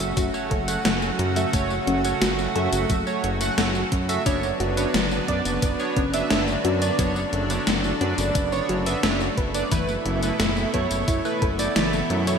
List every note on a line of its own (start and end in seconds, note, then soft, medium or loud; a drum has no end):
0.00 0.13 F#1 loud
0.00 4.22 C#3 medium
0.00 9.68 F#3 medium
0.00 0.30 A3 medium
0.00 4.22 A3 medium
0.00 0.30 F#4 medium
0.00 4.22 F#4 medium
0.00 0.30 E5 medium
0.00 closed hi-hat medium
0.00 tambourine medium
0.00 impact medium
0.17 0.30 F#1 medium
0.17 0.40 F#4 medium
0.17 kick loud
0.17 closed hi-hat loud
0.17 tambourine medium
0.34 0.55 A3 medium
0.34 0.55 F#4 medium
0.34 0.55 C#5 medium
0.34 tambourine soft
0.51 0.77 F#1 medium
0.51 0.83 A4 medium
0.51 kick loud
0.51 closed hi-hat medium
0.68 0.81 A3 medium
0.68 0.81 F#4 medium
0.68 0.81 F#5 loud
0.68 closed hi-hat medium
0.68 tambourine medium
0.85 1.11 F#1 medium
0.85 1.09 F#3 medium
0.85 0.98 A3 medium
0.85 0.98 F#4 medium
0.85 0.98 F#5 loud
0.85 snare loud
0.85 closed hi-hat loud
0.85 tambourine medium
1.02 tambourine soft
1.19 1.45 F#2 loud
1.19 closed hi-hat medium
1.36 1.50 A3 medium
1.36 1.50 F#4 medium
1.36 1.50 E5 loud
1.36 closed hi-hat medium
1.36 tambourine medium
1.53 1.80 F#1 loud
1.53 1.77 A3 medium
1.53 1.75 A3 loud
1.53 1.75 F#4 medium
1.53 1.75 C#5 loud
1.53 kick loud
1.53 closed hi-hat loud
1.53 tambourine medium
1.70 tambourine soft
1.87 2.14 F#1 loud
1.87 2.01 C#4 medium
1.87 closed hi-hat medium
2.05 2.18 A3 medium
2.05 2.18 F#4 medium
2.05 2.18 C#5 medium
2.05 closed hi-hat medium
2.05 tambourine medium
2.21 2.48 F#1 loud
2.21 2.45 F#4 medium
2.21 snare loud
2.21 closed hi-hat loud
2.21 tambourine soft
2.39 tambourine soft
2.55 2.69 F#2 medium
2.55 3.03 A3 medium
2.55 3.03 F#4 medium
2.55 2.88 A4 medium
2.55 3.03 E5 medium
2.55 closed hi-hat medium
2.72 2.86 F#1 loud
2.72 closed hi-hat medium
2.72 tambourine medium
2.90 3.03 F#1 medium
2.90 3.13 F#3 medium
2.90 kick loud
2.90 closed hi-hat loud
2.90 tambourine soft
3.07 3.28 A3 medium
3.07 3.28 F#4 medium
3.07 3.28 C#5 medium
3.07 tambourine soft
3.24 3.50 F#1 medium
3.24 closed hi-hat medium
3.41 3.54 A3 medium
3.41 3.54 F#4 medium
3.41 3.54 F#5 loud
3.41 closed hi-hat medium
3.41 tambourine medium
3.58 3.84 F#1 medium
3.58 3.81 A3 medium
3.58 3.71 A3 loud
3.58 3.71 F#4 medium
3.58 3.71 F#5 loud
3.58 snare loud
3.58 closed hi-hat loud
3.58 tambourine medium
3.75 tambourine soft
3.92 4.18 F#2 loud
3.92 4.06 C#4 medium
3.92 kick loud
3.92 closed hi-hat medium
4.09 4.22 A3 medium
4.09 4.22 F#4 medium
4.09 4.22 E5 loud
4.09 closed hi-hat medium
4.09 tambourine medium
4.26 4.52 F#1 loud
4.26 9.68 D3 medium
4.26 6.96 B3 medium
4.26 4.47 B3 loud
4.26 9.67 D4 medium
4.26 4.50 D4 medium
4.26 4.47 D4 medium
4.26 4.47 C#5 loud
4.26 kick loud
4.26 closed hi-hat loud
4.26 tambourine medium
4.43 tambourine soft
4.60 4.86 F#1 loud
4.60 4.92 F#4 medium
4.60 closed hi-hat medium
4.77 4.90 B3 medium
4.77 4.90 D4 medium
4.77 4.90 C#5 medium
4.77 closed hi-hat medium
4.77 tambourine medium
4.94 5.21 F#1 loud
4.94 5.18 F#3 medium
4.94 snare loud
4.94 closed hi-hat loud
4.94 tambourine soft
5.11 tambourine soft
5.28 5.42 F#2 medium
5.28 5.75 B3 medium
5.28 5.75 D4 medium
5.28 5.75 D5 medium
5.28 kick medium
5.28 closed hi-hat medium
5.45 5.59 F#1 loud
5.45 closed hi-hat medium
5.45 tambourine medium
5.62 5.76 F#1 medium
5.62 5.86 B3 medium
5.62 kick loud
5.62 closed hi-hat medium
5.62 tambourine soft
5.79 6.01 B3 medium
5.79 6.01 D4 medium
5.79 6.01 C#5 loud
5.79 tambourine soft
5.96 6.23 F#1 medium
5.96 6.11 C#4 medium
5.96 kick loud
5.96 closed hi-hat medium
6.14 6.27 B3 loud
6.14 6.27 D4 medium
6.14 6.27 E5 loud
6.14 closed hi-hat medium
6.14 tambourine medium
6.30 6.57 F#1 medium
6.30 6.44 B3 medium
6.30 6.54 D4 medium
6.30 6.44 D4 medium
6.30 6.44 E5 loud
6.30 snare loud
6.30 closed hi-hat loud
6.30 tambourine soft
6.48 tambourine soft
6.65 6.91 F#2 loud
6.65 6.97 F#4 medium
6.65 closed hi-hat medium
6.82 6.95 B3 medium
6.82 6.95 D4 medium
6.82 6.95 D5 loud
6.82 closed hi-hat medium
6.82 tambourine medium
6.99 7.25 F#1 loud
6.99 7.22 F#3 medium
6.99 12.38 A3 medium
6.99 7.20 B3 medium
6.99 7.20 D4 medium
6.99 7.20 C#5 loud
6.99 kick loud
6.99 closed hi-hat loud
6.99 tambourine soft
7.16 tambourine soft
7.33 7.59 F#1 loud
7.33 closed hi-hat medium
7.50 7.63 B3 medium
7.50 7.63 D4 medium
7.50 7.63 C#5 loud
7.50 closed hi-hat medium
7.50 tambourine medium
7.67 7.93 F#1 loud
7.67 7.90 B3 medium
7.67 snare loud
7.67 closed hi-hat medium
7.67 tambourine soft
7.84 tambourine soft
8.01 8.14 F#2 medium
8.01 8.48 B3 medium
8.01 8.15 C#4 medium
8.01 8.48 D4 medium
8.01 8.48 D5 medium
8.01 closed hi-hat medium
8.18 8.31 F#1 loud
8.18 closed hi-hat medium
8.18 tambourine medium
8.35 8.62 F#1 medium
8.35 8.59 D4 medium
8.35 kick loud
8.35 closed hi-hat medium
8.35 tambourine soft
8.52 8.73 B3 medium
8.52 8.73 D4 medium
8.52 8.73 C#5 loud
8.52 tambourine soft
8.69 8.96 F#1 medium
8.69 8.93 F#4 medium
8.69 closed hi-hat medium
8.86 9.00 B3 medium
8.86 9.00 D4 medium
8.86 9.00 E5 loud
8.86 closed hi-hat medium
8.86 tambourine medium
9.03 9.30 F#1 medium
9.03 9.17 B3 medium
9.03 9.27 C#4 medium
9.03 9.17 D4 medium
9.03 9.17 E5 loud
9.03 snare loud
9.03 closed hi-hat medium
9.03 tambourine soft
9.20 tambourine soft
9.37 9.64 F#1 loud
9.37 9.52 B4 loud
9.37 kick loud
9.37 closed hi-hat medium
9.54 9.68 B3 medium
9.54 9.68 D4 medium
9.54 9.68 D5 loud
9.54 closed hi-hat medium
9.54 tambourine medium
9.71 9.98 F#1 loud
9.71 12.38 B2 medium
9.71 9.95 E3 medium
9.71 12.38 E3 medium
9.71 9.93 A3 loud
9.71 12.38 E4 medium
9.71 9.93 E4 medium
9.71 9.93 B4 loud
9.71 kick loud
9.71 closed hi-hat medium
9.71 tambourine medium
9.89 tambourine soft
10.06 10.32 F#1 loud
10.06 closed hi-hat medium
10.23 10.36 A3 medium
10.23 10.36 E4 medium
10.23 10.36 B4 loud
10.23 closed hi-hat medium
10.23 tambourine medium
10.40 10.66 F#1 medium
10.40 10.63 A3 medium
10.40 snare loud
10.40 closed hi-hat medium
10.40 tambourine soft
10.57 tambourine soft
10.74 10.87 F#2 medium
10.74 11.21 A3 medium
10.74 10.88 B3 medium
10.74 11.21 E4 medium
10.74 11.21 C#5 medium
10.74 kick medium
10.74 closed hi-hat medium
10.91 11.04 F#1 loud
10.91 closed hi-hat medium
10.91 tambourine medium
11.08 11.21 F#1 medium
11.08 11.31 E4 medium
11.08 kick loud
11.08 closed hi-hat medium
11.08 tambourine soft
11.25 11.46 A3 medium
11.25 11.46 E4 medium
11.25 11.46 B4 medium
11.25 tambourine soft
11.42 11.68 F#1 medium
11.42 11.74 A4 medium
11.42 kick loud
11.42 closed hi-hat medium
11.59 11.72 A3 medium
11.59 11.72 E4 medium
11.59 11.72 D5 loud
11.59 closed hi-hat medium
11.59 tambourine medium
11.76 12.02 F#1 medium
11.76 12.00 E3 medium
11.76 11.89 A3 medium
11.76 11.89 E4 medium
11.76 11.89 D5 loud
11.76 snare loud
11.76 closed hi-hat medium
11.76 tambourine soft
11.93 tambourine soft
12.10 12.37 F#2 loud
12.10 closed hi-hat medium
12.27 12.38 A3 medium
12.27 12.38 E4 medium
12.27 12.38 C#5 loud
12.27 closed hi-hat medium
12.27 tambourine medium